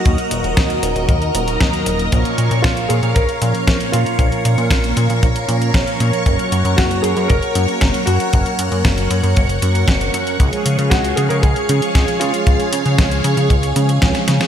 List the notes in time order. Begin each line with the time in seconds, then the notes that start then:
Already playing: F#4 A#4 D#5 A#5
0.05 D#2 F#3 A#3 D#4 A#4, kick, closed hi-hat
0.18 closed hi-hat
0.31 D#1, closed hi-hat
0.44 D#1, closed hi-hat
0.57 D#2, kick, snare, closed hi-hat
0.70 closed hi-hat
0.83 D#1, closed hi-hat
0.96 D#1 F#3 A#3 D#4 A#4, closed hi-hat
1.09 D#2, kick, closed hi-hat
1.22 closed hi-hat
1.35 D#1 F#3 A#3 D#4 A#4, closed hi-hat
1.48 closed hi-hat
1.61 D#2, kick, snare, closed hi-hat
1.73 closed hi-hat
1.86 D#1, closed hi-hat
1.99 closed hi-hat
2.12 A#1 A#2 F3 A#3 C#4 A#4 C#5 F5 C#6, kick, closed hi-hat
2.25 closed hi-hat
2.38 A#2, closed hi-hat
2.51 A#2, closed hi-hat
2.62 A#1 F4, kick, snare, closed hi-hat
2.77 closed hi-hat
2.89 A#2 G#4, closed hi-hat
3.03 A#2 F3 A#3 C#4 A#4, closed hi-hat
3.15 A#1 A#4, kick, closed hi-hat
3.29 closed hi-hat
3.42 A#2 F3 A#3 C#4 A#4, closed hi-hat
3.55 closed hi-hat
3.67 A#1, kick, snare, closed hi-hat
3.80 closed hi-hat
3.92 A#2 F4, closed hi-hat
4.06 closed hi-hat
4.19 A#1 A#2 F3 A#3 C#4 A#4, kick, closed hi-hat
4.32 closed hi-hat
4.45 A#2, closed hi-hat
4.58 A#2, closed hi-hat
4.71 A#1, kick, snare, closed hi-hat
4.84 closed hi-hat
4.97 A#2, closed hi-hat
5.10 A#2 F3 A#3 C#4 A#4, closed hi-hat
5.23 A#1, kick, closed hi-hat
5.36 closed hi-hat
5.48 A#2 F3 A#3 C#4 A#4, closed hi-hat
5.62 closed hi-hat
5.74 A#1, kick, snare, closed hi-hat
5.87 closed hi-hat
6.00 A#2, closed hi-hat
6.13 closed hi-hat
6.26 F#1 F#3 A#3 C#4 A#4 F#5, kick, closed hi-hat
6.39 closed hi-hat
6.52 F#2, closed hi-hat
6.65 F#2, closed hi-hat
6.76 F#1 F#4, kick, snare, closed hi-hat
6.91 closed hi-hat
7.02 F#2 G#4, closed hi-hat
7.16 F#2 F#3 A#3 C#4 A#4, closed hi-hat
7.28 F#1 A#4, kick, closed hi-hat
7.43 closed hi-hat
7.55 F#2 F#3 A#3 C#4 A#4, closed hi-hat
7.68 closed hi-hat
7.81 F#1, kick, snare, closed hi-hat
7.94 closed hi-hat
8.06 F#2 F#4, closed hi-hat
8.20 closed hi-hat
8.33 F#1 F#3 A#3 C#4 A#4, kick, closed hi-hat
8.46 closed hi-hat
8.59 F#2, closed hi-hat
8.72 F#2, closed hi-hat
8.85 F#1, kick, snare, closed hi-hat
8.98 closed hi-hat
9.10 F#2, closed hi-hat
9.23 F#2 F#3 A#3 C#4 A#4, closed hi-hat
9.37 F#1, kick, closed hi-hat
9.49 closed hi-hat
9.62 F#2 F#3 A#3 C#4 A#4, closed hi-hat
9.75 closed hi-hat
9.88 F#1, kick, snare, closed hi-hat
10.01 closed hi-hat
10.14 F#2, closed hi-hat
10.27 closed hi-hat
10.40 C#2 F3 G#3 C#4 G#4 C#5 F5, kick, closed hi-hat
10.53 closed hi-hat
10.66 C#3, closed hi-hat
10.79 C#3, closed hi-hat
10.90 C#2 F#4, kick, snare, closed hi-hat
11.04 closed hi-hat
11.16 C#3 G#4, closed hi-hat
11.29 C#3 F3 G#3 C#4 G#4 A#4, closed hi-hat
11.42 C#2 G#4, kick, closed hi-hat
11.56 closed hi-hat
11.69 C#3 F3 G#3 C#4 G#4, closed hi-hat
11.82 closed hi-hat
11.95 C#2, kick, snare, closed hi-hat
12.08 closed hi-hat
12.20 C#3 F4, closed hi-hat
12.34 closed hi-hat
12.47 C#2 F3 G#3 C#4 G#4, kick, closed hi-hat
12.60 closed hi-hat
12.73 C#3, closed hi-hat
12.86 C#3, closed hi-hat
12.98 C#2, kick, snare, closed hi-hat
13.11 closed hi-hat
13.24 C#3, closed hi-hat
13.37 C#3 F3 G#3 C#4 G#4, closed hi-hat
13.50 C#2, kick, closed hi-hat
13.63 closed hi-hat
13.76 C#3 F3 G#3 C#4 G#4, closed hi-hat
13.89 closed hi-hat
14.02 C#2, kick, snare, closed hi-hat
14.15 snare, closed hi-hat
14.28 C#3, snare, closed hi-hat
14.41 snare, closed hi-hat